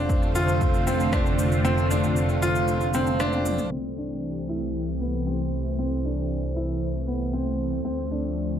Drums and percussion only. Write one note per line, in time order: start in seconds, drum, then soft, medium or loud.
0.09 kick medium
0.09 shaker soft
0.23 shaker soft
0.35 shaker medium
0.48 shaker soft
0.61 kick medium
0.61 shaker soft
0.74 shaker soft
0.87 shaker medium
1.00 shaker soft
1.13 kick loud
1.13 cross-stick medium
1.13 shaker soft
1.26 shaker soft
1.39 shaker medium
1.52 shaker soft
1.65 shaker soft
1.78 shaker soft
1.91 shaker medium
2.04 shaker soft
2.16 shaker soft
2.29 shaker soft
2.43 shaker medium
2.55 shaker soft
2.68 high tom medium
2.68 shaker soft
2.81 high tom medium
2.81 shaker soft
2.94 high tom medium
2.94 shaker medium
3.07 mid tom medium
3.07 shaker soft
3.20 cross-stick medium
3.20 mid tom medium
3.20 shaker soft
3.33 mid tom medium
3.33 shaker soft
3.46 mid tom medium
3.46 shaker medium
3.58 mid tom medium
3.58 shaker soft